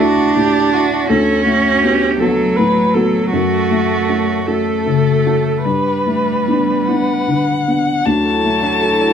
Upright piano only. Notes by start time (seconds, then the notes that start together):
Already playing: D2 A3
0.00 E4 F#4
0.36 A2
0.73 E4 F#4
1.10 D2
1.46 A3
1.84 B3 F#4
2.21 B3 F#4
2.59 A2
2.95 B3 F#4
3.33 F#2
3.71 A3
4.09 C#4 F#4
4.48 C#4 F#4
4.86 C#3
5.26 C#4 F#4
5.65 G2
6.06 A3
6.48 B3 D4
6.89 B3 D4
7.28 D3
7.68 B3 D4
8.06 D2
8.44 A3
8.82 F#4